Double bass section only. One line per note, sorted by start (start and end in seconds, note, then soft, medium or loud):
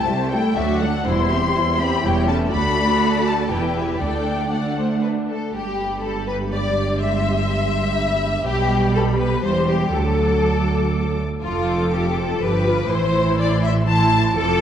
0.57 0.98 D2 medium
1.06 1.47 E1 medium
2.04 2.45 E1 medium
2.52 2.98 D2 soft
3.51 3.97 E1 soft
4.01 4.48 D2 soft
5.52 8.42 G1 soft
8.46 9.41 B1 soft
9.45 9.93 E1 medium
9.94 11.21 D2 soft
11.43 12.38 F1 soft
12.41 12.91 G1 soft
12.91 14.33 A1 soft
14.36 14.61 F1 medium